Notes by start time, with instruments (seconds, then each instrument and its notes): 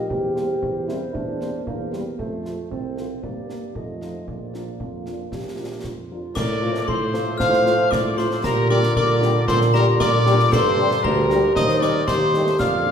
0.09 tuba E2, euphonium G4, woodwind section A#4 C5, concert bass drum
0.35 french horn section G3 A#3 C4, cornet C5, snare
0.63 tuba E2, concert bass drum
0.87 french horn section G3 A#3 C4, euphonium E4, cornet C5, snare
1.14 tuba E2, euphonium D4, concert bass drum
1.41 french horn section G3 A#3 C4, cornet C5, snare
1.66 tuba E2, euphonium A#3, woodwind section A#4 C5, concert bass drum
1.92 euphonium G3, french horn section G3 A#3 C4, cornet C5, snare
2.18 tuba F2, euphonium A3, woodwind section A4 C5, concert bass drum
2.44 french horn section F3 A3 F4, cornet C5, snare
2.71 tuba C2, euphonium C4, woodwind section A4 C5, concert bass drum
2.97 french horn section F3 A3 F4, cornet C5, snare
3.23 tuba G2, euphonium A#3, woodwind section G4 D5, concert bass drum
3.49 euphonium A#3, french horn section A#3 D4, cornet A#4, snare
3.75 tuba F2, euphonium A3, woodwind section F4 D#5, concert bass drum
4.02 french horn section F3 D#4 F4, cornet C5, snare
4.27 tuba A#1, euphonium A#3, woodwind section F4 D5, concert bass drum
4.54 french horn section F3 D4 F4, cornet A#4, snare
4.79 tuba F2, woodwind section F4, concert bass drum
5.06 french horn section F3 D4 F4, cornet A#4, snare
5.32 tuba A#1, woodwind section G4, concert bass drum, snare
5.59 french horn section F3 D4 F4, cornet A#4
5.83 tuba F2, woodwind section F4, concert bass drum, snare
6.10 french horn section F3 D4 F4, cornet A#4
6.35 tuba A2, trombone section F3 A3, woodwind section A#4, cornet D5, glockenspiel D6, piccolo D6, concert bass drum, snare, crash
6.62 french horn section A3 F4 C5
6.75 snare
6.87 tuba A2, woodwind section A4, cornet C5, glockenspiel C6, piccolo C6, concert bass drum
7.14 french horn section A3 F4 C5, snare
7.38 tuba A2, woodwind section C5, cornet F5, glockenspiel F6, piccolo F6, concert bass drum, snare
7.53 snare
7.66 french horn section A3 F4 C5, snare
7.91 tuba A2, woodwind section A#4, cornet D5, glockenspiel D6, piccolo D6, concert bass drum, snare
8.17 french horn section A3 F4 C5, woodwind section A4, cornet C5, piccolo C6, glockenspiel C6, snare
8.31 snare
8.43 tuba A#2, trombone section D3 G3, woodwind section G4, cornet A#4, piccolo A#5, glockenspiel A#5, concert bass drum, snare, crash
8.69 french horn section G3 D4 G4, woodwind section A#4, cornet D5, piccolo D6, glockenspiel D6
8.83 snare
8.95 tuba A#2, woodwind section A#4, cornet D5, piccolo D6, glockenspiel D6, concert bass drum
9.22 french horn section G3 D4 G4, snare
9.47 tuba A#2, woodwind section A4, cornet C5, piccolo C6, glockenspiel C6, concert bass drum, snare
9.61 snare
9.74 french horn section G3 D4 G4, woodwind section G4, cornet A#4, glockenspiel A#5, piccolo A#5, snare
9.99 tuba A#2, woodwind section A#4, cornet D5, piccolo D6, glockenspiel D6, concert bass drum, snare
10.26 french horn section G3 D4 G4, snare
10.39 snare
10.51 tuba G2, trombone section D3 G3, woodwind section A4, cornet C5, piccolo C6, glockenspiel C6, concert bass drum, snare, crash
10.78 french horn section G3 D4 G4
10.91 snare
11.03 tuba D2, trombone section D3 G3, woodwind section G4, cornet A#4, piccolo A#5, glockenspiel A#5, concert bass drum
11.30 french horn section G3 D4 G4, snare
11.55 tuba D#2, trombone section D#3 G3, woodwind section C5, cornet D#5, piccolo D#6, glockenspiel D#6, concert bass drum, snare
11.69 snare
11.81 french horn section G3 D#4 G4, woodwind section A#4, cornet D5, piccolo D6, glockenspiel D6, snare
12.07 tuba D#2, trombone section D#3 G3, woodwind section G4, cornet C5, glockenspiel C6, piccolo C6, concert bass drum, snare
12.34 french horn section G3 D#4 G4, trombone section A3, snare
12.47 snare
12.59 tuba F2, trombone section D3 A#3, woodwind section D5, cornet F5, piccolo F6, glockenspiel F6, concert bass drum, snare, crash
12.86 french horn section A#3 D4 F4